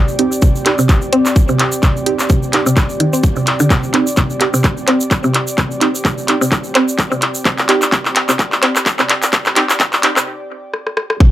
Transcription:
Already playing: analog synth pad C4 G4 D5
0.08 shaker
0.19 synth stab C4 D#4 G4, closed hi-hat
0.32 shaker
0.42 synth arpeggio sound C3, kick, shaker
0.56 shaker
0.66 synth stab C4 D#4 G4, clap, closed hi-hat
0.79 synth arpeggio sound C3, shaker
0.89 kick, clap, shaker
1.02 shaker
1.13 synth arpeggio sound C4, closed hi-hat
1.26 clap, shaker
1.36 kick, shaker
1.48 synth arpeggio sound C3, shaker
1.59 clap, closed hi-hat
1.72 shaker
1.83 synth arpeggio sound C3, kick, clap, shaker
1.97 shaker
2.06 synth stab C4 D#4 G4, closed hi-hat
2.19 clap, shaker
2.29 synth arpeggio sound C3, kick, shaker
2.43 shaker
2.53 synth stab C4 D#4 G4, clap, closed hi-hat
2.66 synth arpeggio sound C3, shaker
2.77 kick, clap, shaker
2.89 shaker
3.00 synth arpeggio sound D#3, closed hi-hat
3.13 synth arpeggio sound C4, shaker
3.23 kick, shaker
3.36 synth arpeggio sound C3, shaker
3.47 clap, closed hi-hat
3.60 synth arpeggio sound D3, shaker
3.70 synth arpeggio sound C3, kick, clap, shaker
3.83 shaker
3.94 synth stab C4 D#4 G4, clap, closed hi-hat
4.07 shaker
4.17 synth arpeggio sound C3, kick, clap, shaker
4.30 shaker
4.41 synth stab C4 D#4 G4, clap, closed hi-hat
4.54 synth arpeggio sound C3, shaker
4.64 kick, clap, shaker
4.77 shaker
4.88 synth arpeggio sound C4, clap, closed hi-hat
5.01 shaker
5.11 kick, clap, shaker
5.24 synth arpeggio sound C3, shaker
5.34 clap, closed hi-hat
5.47 shaker
5.58 synth arpeggio sound C3, kick, clap, shaker
5.71 shaker
5.81 synth stab C4 D#4 G4, clap, closed hi-hat
5.95 shaker
6.05 synth arpeggio sound C3, kick, clap, shaker
6.18 shaker
6.28 synth stab C4 D#4 G4, clap, closed hi-hat
6.41 synth arpeggio sound C3, shaker
6.52 kick, clap, shaker
6.64 shaker
6.75 synth arpeggio sound C4, clap, closed hi-hat
6.88 shaker
6.99 kick, clap, shaker
7.12 synth arpeggio sound C3, shaker
7.22 clap, closed hi-hat
7.34 shaker
7.45 synth arpeggio sound C3, kick, clap, shaker
7.58 clap, shaker
7.69 synth stab C4 D#4 G4, clap, closed hi-hat
7.82 clap, shaker
7.92 synth arpeggio sound C3, kick, clap, shaker
8.05 clap, shaker
8.16 clap, closed hi-hat
8.29 synth arpeggio sound C3, clap, shaker
8.39 kick, clap, shaker
8.52 clap, shaker
8.63 synth arpeggio sound C4, clap, closed hi-hat
8.76 clap, shaker
8.86 kick, clap, shaker
8.99 synth arpeggio sound C3, clap, shaker
9.09 clap, closed hi-hat
9.22 clap, shaker
9.33 synth arpeggio sound C3, kick, clap, shaker
9.45 clap, shaker
9.56 synth stab C4 D#4 G4, clap, closed hi-hat
9.69 clap, shaker
9.80 synth arpeggio sound C3, kick, clap, shaker
9.93 clap, shaker
10.03 synth stab C4 D#4 G4, clap, closed hi-hat
10.16 synth arpeggio sound C3, clap, shaker
10.74 cross-stick
10.87 cross-stick
10.97 cross-stick
11.10 cross-stick
11.20 synth arpeggio sound C3, kick

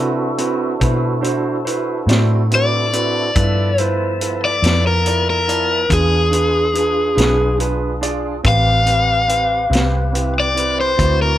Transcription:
Already playing: fingered electric bass C3, grand piano C4 E4 F#4 B4, tonewheel organ D4 E4 F#4 A4
0.38 grand piano C4 E4 F#4 B4, closed hi-hat
0.80 fingered electric bass B2, grand piano E4 F#4 B4 C5, kick, closed hi-hat
1.21 grand piano D4 E4 F#4 C5, closed hi-hat
1.65 grand piano E4 F#4 B4 C5, closed hi-hat
2.07 fingered electric bass A2, grand piano C4 E4 F#4 D5, closed hi-hat
2.11 snare
2.51 grand piano C4 E4 F#4 B4, closed hi-hat
2.55 overdriven electric guitar D5
2.92 grand piano C4 E4 F#4 B4, closed hi-hat
3.33 fingered electric bass G2, tonewheel organ F3 B3 E5 A5, grand piano E4 F4 A4 B4, kick, closed hi-hat
3.78 grand piano E4 F4 A4 B4, overdriven electric guitar C5, closed hi-hat
4.19 grand piano E4 F4 A4 B4, closed hi-hat
4.45 overdriven electric guitar D5
4.62 fingered electric bass F2, grand piano E4 F4 A4 B4, closed hi-hat
4.66 snare
4.87 overdriven electric guitar A#4
5.05 grand piano E4 F4 A4 D5, closed hi-hat
5.30 overdriven electric guitar A#4
5.47 grand piano E4 F4 D5 A5, closed hi-hat
5.88 fingered electric bass E2, grand piano D4 F4 G#4 B4, tonewheel organ D4 F4 G#4, kick, closed hi-hat
5.93 overdriven electric guitar G#4
6.31 grand piano D4 F4 G#4 B4, closed hi-hat
6.73 grand piano D4 F4 G#4 B4, closed hi-hat
7.15 fingered electric bass B1, grand piano D4 F4 G#4 B4, closed hi-hat
7.20 snare
7.58 grand piano D4 F4 G#4 B4, closed hi-hat
8.01 grand piano D4 F4 G#4 D5, closed hi-hat
8.43 fingered electric bass A1, grand piano C4 G4 B4, tonewheel organ C4 G4 B4, kick, closed hi-hat
8.48 overdriven electric guitar F5
8.86 grand piano C4 G4 B4, closed hi-hat
9.28 grand piano C4 G4 B4, closed hi-hat
9.70 fingered electric bass C2, grand piano C4 G4 B4, closed hi-hat
9.75 snare
10.13 grand piano C4 E4 G4 B4, closed hi-hat
10.40 overdriven electric guitar D5
10.54 grand piano C4 E4 G4 B4, closed hi-hat
10.81 overdriven electric guitar C5
10.96 fingered electric bass D2, tonewheel organ C4 E4 F#4 D5, grand piano C4 E4 F#4 B4, kick, closed hi-hat
11.22 overdriven electric guitar A#4

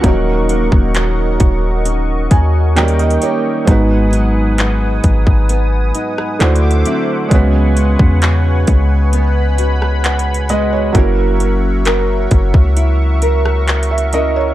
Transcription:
Already playing: nylon-string guitar A#3 C#4, analog synth pad A#4 F#5 C#6
0.01 808-style bass D#1, nylon-string guitar D#3 F#4, felt piano F3 A#3 C#4, analog synth pad D#5, kick, closed hi-hat
0.06 felt piano F#3 D#4 A#4
0.49 nylon-string guitar A#3, closed hi-hat
0.72 808-style bass D#1, kick
0.94 nylon-string guitar F#4, clap, closed hi-hat
1.40 808-style bass D#1, kick, closed hi-hat
1.85 nylon-string guitar C#4, closed hi-hat
2.31 808-style bass D#2, nylon-string guitar F#4, felt piano G#5, kick, closed hi-hat
2.75 nylon-string guitar D#3, felt piano F#3 A#3 C#4 D#4 A#4 G5, analog synth pad G5, clap, closed hi-hat
2.82 felt piano G3
2.88 closed hi-hat
2.99 felt piano D#5, closed hi-hat
3.11 closed hi-hat
3.22 nylon-string guitar A#3 C#4 G4, felt piano C#5, closed hi-hat
3.65 808-style bass G#1, nylon-string guitar G#2 D#4, felt piano G#3 B3 D#4, analog synth pad B4 F#5 G#5 D#6, kick, closed hi-hat
3.70 felt piano F#4 B4
4.13 nylon-string guitar F#3, closed hi-hat
4.58 nylon-string guitar D#4, clap, closed hi-hat
5.04 808-style bass G#1, kick, closed hi-hat
5.27 808-style bass G#1, kick
5.49 nylon-string guitar B3, closed hi-hat
5.95 nylon-string guitar D#4, closed hi-hat
6.18 cross-stick
6.39 808-style bass D2, nylon-string guitar D3, felt piano A3 D4 E4 F#4 C5, analog synth pad C5 E5 D6, clap, closed hi-hat
6.56 closed hi-hat
6.71 closed hi-hat
6.85 nylon-string guitar F#3 C4 E4, closed hi-hat
7.29 808-style bass C#2, nylon-string guitar C#3 F#4, felt piano G#3 B3 C#4, analog synth pad B4 G#5 C#6, kick, closed hi-hat
7.33 felt piano F#4 B4
7.77 nylon-string guitar G#3, closed hi-hat
7.99 808-style bass E2, kick
8.22 nylon-string guitar F#4, clap, closed hi-hat
8.67 808-style bass C#2, kick, closed hi-hat
9.13 nylon-string guitar B3, analog synth pad B5, closed hi-hat
9.58 nylon-string guitar F#4, closed hi-hat
9.82 cross-stick
10.04 felt piano F#5, clap, closed hi-hat
10.19 closed hi-hat
10.34 closed hi-hat
10.49 nylon-string guitar G#3 B3 F#4, felt piano D#5, closed hi-hat
10.73 felt piano C#5
10.93 808-style bass F#1, felt piano F#3 A#3 C#4, nylon-string guitar F#3 A#4, analog synth pad A#4 E5 C#6, kick, closed hi-hat
10.97 felt piano E4 A#4
11.40 nylon-string guitar C#4, closed hi-hat
11.85 nylon-string guitar A#4, clap, closed hi-hat
12.31 808-style bass F#1, kick, closed hi-hat
12.54 808-style bass C#2, kick
12.77 nylon-string guitar E4, closed hi-hat
13.22 nylon-string guitar A#4, closed hi-hat
13.46 cross-stick
13.68 clap, closed hi-hat
13.83 closed hi-hat
13.91 felt piano E5
13.98 closed hi-hat
14.13 nylon-string guitar C#4 E4 A#4, felt piano D#5, closed hi-hat
14.36 felt piano C#5

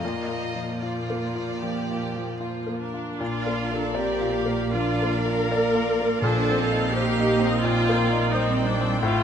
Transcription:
0.00 cello section A#2, viola section F3 A#3, violin section F4 A#4 D#5
0.04 grand piano A#2
0.28 grand piano F4
0.54 grand piano F3
0.80 violin section F4 D5, grand piano F4
1.10 grand piano A#3
1.35 grand piano F4
1.59 grand piano F3, violin section G4
1.90 grand piano F4
2.16 grand piano F3
2.39 violin section F4, grand piano F4
2.67 grand piano A#3
2.81 viola section D4, violin section A#4
2.94 grand piano F4
3.20 double bass section A#1, grand piano A#2, cello section D4, viola section F4, violin section A#4 D5 F5
3.47 grand piano A#3
3.71 grand piano F4
3.76 viola section A4
3.94 cello section C4, viola section G4, violin section D5, grand piano D5
4.21 grand piano F4
4.32 cello section A#3, violin section F5
4.46 grand piano A#3
4.73 grand piano F3, cello section D4, viola section F4, violin section A#4 D5 F5
5.02 grand piano A#3
5.14 viola section A#4
5.26 grand piano F4
5.50 cello section A#3, violin section D5, grand piano D5
5.75 grand piano F4
6.00 grand piano A#3
6.22 double bass section A#1, timpani A#2, grand piano A#2, cello section D4, viola section A4, violin section C5 D#5
6.50 grand piano C4
6.58 cello section C4, violin section F5
6.71 grand piano D#4
6.93 cello section A#3, viola section G4, violin section A#4 D#5, grand piano C5
7.19 grand piano D#4
7.39 grand piano C4
7.47 viola section D#4
7.63 grand piano A#2, cello section A#3, viola section F4, violin section A#4 D#5 G5
7.89 grand piano A#3
7.99 violin section D5
8.12 grand piano D#4
8.32 cello section G3, viola section D#4, grand piano C5, violin section C5 G5
8.52 viola section C4
8.57 grand piano D#4
8.67 viola section D4
8.81 grand piano C4
9.01 double bass section A1, grand piano A2, cello section A3, viola section F4, violin section C5

